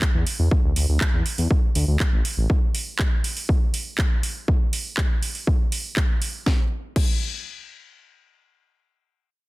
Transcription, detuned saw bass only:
0.14 E2
0.39 E2
0.64 D2
0.76 D2
0.89 D2
1.13 E2
1.38 E2
1.75 D2
1.88 D2
2.12 A1
2.37 A1

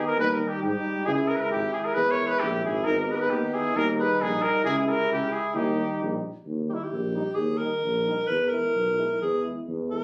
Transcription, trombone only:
Already playing: D#4
0.17 D#4
1.06 E4
1.96 E4
2.87 D#4
3.74 D#4
4.63 E4
5.54 D#4
6.69 D#4
7.14 D#4
7.60 D#4
8.05 D#4
8.52 E4
8.97 E4
9.42 E4
9.89 E4

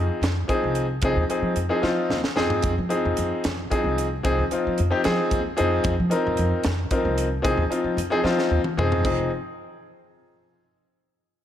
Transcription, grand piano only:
Already playing: F3 C4 D#4 G#4
0.48 F3 C4 D#4 G#4
1.03 F3 C4 D#4 G#4
1.29 F3 C4 D#4 G#4
1.69 F3 C4 D#4 G#4
1.82 F3 C4 D#4 F4
2.36 F3 C4 D#4 G#4
2.89 F3 C4 D#4 G#4
3.70 F3 C4 D#4 G#4
4.23 F3 C4 D#4 G#4
4.51 F3 C4 D#4 F4
4.91 F3 C4 D#4 G4
5.04 F3 C4 D#4 G#4
5.57 F3 C4 D#4 G#4
6.10 F3 C4 D#4 A#4
6.91 F3 C4 D#4 A#4
7.42 F3 C4 D#4 G#4
7.70 F3 C4 D#4 F4
8.10 F3 C4 D#4 G#4
8.24 F3 C4 D#4 F4
8.77 F3 C4 D#4 G#4
9.05 F3 C4 D#4 G#4

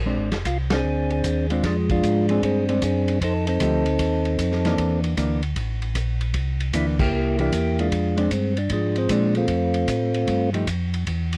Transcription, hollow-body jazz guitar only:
0.06 G#3 C4 D4
1.51 G#3 C4 D4
2.30 G#3 C4 D4
2.69 G#3 C4 D4
3.61 F3 A3 D#4 G4
4.66 E3 A#3 D4
5.17 E3 A#3 D4
6.74 E3 A#3 D4
7.39 E3 A#3 D4
8.16 G#3 C4 D4
9.10 G#3 C4 D4
10.53 F3 A3 D#4 G4

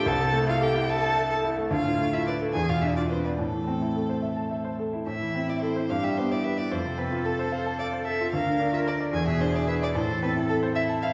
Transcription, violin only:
0.07 A5
0.49 F5
0.63 G5
0.90 A5
1.32 A5
1.72 F5
2.13 E5
2.27 D5
2.53 G#5
2.69 F5
2.82 E5
2.96 D5
3.10 C5
3.24 B4
3.38 A4
5.07 E5
5.49 D5
5.61 C5
5.90 F5
6.04 E5
6.17 C5
6.32 D5
6.44 E5
6.58 D5
6.71 C5
6.98 B4
7.25 A4
7.52 C5
7.79 D5
8.04 E5
8.32 F5
8.73 E5
8.87 D5
9.14 G#5
9.28 E5
9.40 C5
9.55 D5
9.68 E5
9.83 D5
9.95 C5
10.23 B4
10.49 A4
10.75 E5
11.02 F5

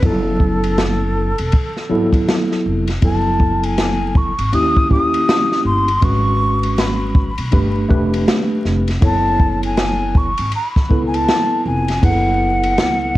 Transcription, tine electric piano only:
0.02 F#3 B3 E4 A4
1.90 F#3 B3 E4 A4
3.02 F#3 B3 E4 A4
4.52 A#3 C#4 E4 G4
4.89 A#3 C#4 E4 G4
6.01 G#3 C#4 F#4 B4
7.52 A3 D4 G4 B4
7.89 A3 D4 G4 B4
9.01 B3 E4 A4 C#5
10.89 B3 E4 A4 B4
12.02 B3 E4 G#4 B4
12.09 A4

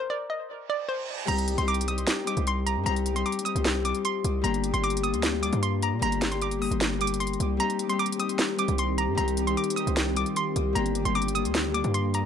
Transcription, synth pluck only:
0.10 D5
0.30 D#5
0.70 D5
0.89 C5
1.28 A#5
1.58 C6
1.68 D6
1.88 D#6
2.27 D6
2.48 C6
2.67 A#5
2.86 A#5
3.16 C6
3.26 D6
3.45 D#6
3.85 D6
4.05 C6
4.44 A#5
4.74 C6
4.84 D6
5.03 D#6
5.43 D6
5.63 C6
5.83 A#5
6.03 A#5
6.32 C6
6.42 D6
6.62 D#6
7.01 D6
7.20 C6
7.60 A#5
7.89 C6
7.99 D6
8.20 D#6
8.59 D6
8.79 C6
8.98 A#5
9.18 A#5
9.47 C6
9.57 D6
9.76 D#6
10.17 D6
10.37 C6
10.75 A#5
11.05 C6
11.15 D6
11.35 D#6
11.74 D6
11.94 C6
12.15 A#5

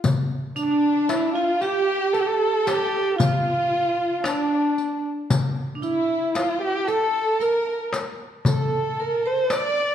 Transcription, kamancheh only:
0.57 D4
1.09 E4
1.34 F4
1.61 G4
2.13 A4
2.21 G4
2.27 A4
2.67 G4
3.19 F4
4.25 D4
5.82 E4
6.35 F4
6.62 G4
6.88 A4
7.42 A#4
8.47 A4
9.00 A#4
9.27 C5
9.52 D5

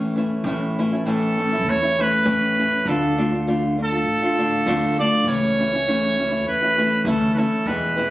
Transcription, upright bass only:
Already playing: E2
0.44 A1
1.67 E2
2.25 E2
2.85 D2
4.05 A1
4.66 D2
5.24 C#2
6.44 E2
7.05 D2
7.66 E2

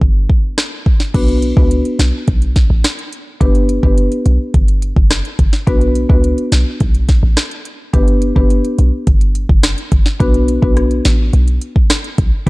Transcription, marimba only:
1.14 B3 D4 F#4 B4
1.57 B3 D4 F#4 B4
3.41 B3 D4 G4 B4
3.83 B3 D4 G4 B4
5.67 B3 D4 F#4 B4
6.09 B3 D4 F#4 B4
7.93 B3 D4 G4 B4
8.36 B3 D4 G4 B4
10.20 B3 D4 F#4 B4
10.62 B3 D4 F#4 B4

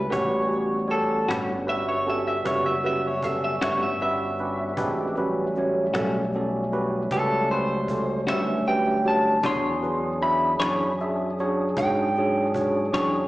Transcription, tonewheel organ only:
0.12 G3 B3 C#4 F#4
4.77 G#3 C4 D4 G4
5.15 F#3 G3 A3 C#4
9.43 F#3 C#4 D4 G#4

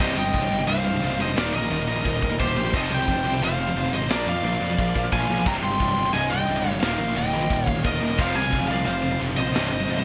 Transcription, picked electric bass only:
0.00 C1
0.16 G1
0.34 C1
0.51 G1
0.67 C1
1.02 C1
1.19 F1
1.37 D#1
1.54 A#1
1.70 D#1
1.88 A#1
2.05 D#1
2.40 D#1
2.56 A#1
2.73 F1
2.91 C2
3.08 F1
3.25 C2
3.41 F1
3.76 F1
3.93 G#1
4.10 A#1
4.26 F2
4.43 A#1
4.60 F2
4.78 A#1
5.12 A#1
5.29 B1
5.46 C1
5.62 G1
5.80 C1
5.96 G1
6.13 C1
6.48 C1
6.65 G1
6.81 D#1
6.99 A#1
7.16 D#1
7.33 A#1
7.50 D#1
7.85 D#1
8.01 D#1
8.19 F1
8.35 C2
8.53 F1
8.70 C2
8.86 F1
9.21 F1
9.37 A#1
9.55 C1
9.72 G1
9.89 C1

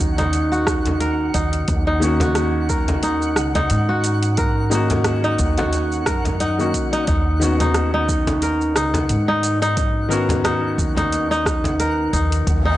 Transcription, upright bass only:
0.00 D#2
1.35 D#2
1.68 D#2
3.37 C#2
3.70 G#2
5.39 D#2
6.07 F#2
7.08 D#2
8.76 C#2
9.10 G#2
10.78 D#2
12.13 D#2
12.47 D#2

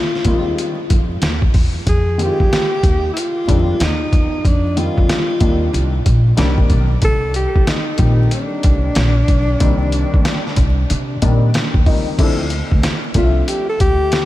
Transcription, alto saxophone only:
Already playing: F4
1.89 G#4
2.22 G4
3.14 E4
3.19 F4
3.83 D#4
4.47 D4
4.78 F4
7.05 A4
7.36 G4
7.68 D#4
8.34 D4
13.18 F4
13.49 G4
13.69 A4
13.81 G4

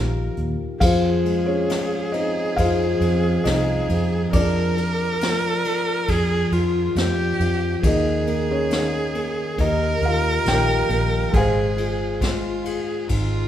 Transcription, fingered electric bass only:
Already playing: A#1
0.37 D#2
0.81 F2
2.57 F2
3.01 F2
3.45 C2
3.90 F2
4.33 F2
6.09 F2
6.52 F2
6.95 F2
7.40 F2
7.83 D#2
9.58 D#2
10.02 D#2
10.46 A#1
10.89 A#1
11.34 G#1
13.09 G#1

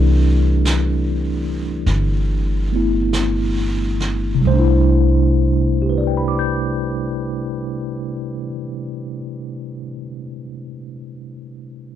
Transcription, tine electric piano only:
Already playing: E3 G3 A3 C4 D4 E4 G4 A4 B4 D5
2.72 A3 B3 E4
4.35 C3
4.42 G3
4.47 A3 C5
4.54 D4
4.60 E4
5.82 G4
5.89 B4
5.98 D5
6.07 G5
6.17 B5
6.28 D6
6.39 G6

